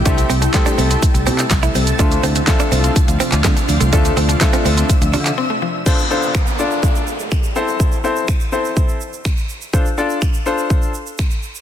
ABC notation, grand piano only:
X:1
M:4/4
L:1/8
Q:1/4=124
K:Dm
V:1 name="Grand piano"
[A,CEGA] z [A,CEGA]2 z4 | [A,CDFA] z [A,CDFA]2 z4 | [A,CDFA] z [A,CDFA]2 z4 | [DFAc] [DFAc] z [DFAd]2 z2 [CEAc]- |
[CEAc] [CEAc] z [CEAc]2 z3 | [DFAc] [DFAd] z [DFAc]2 z3 |]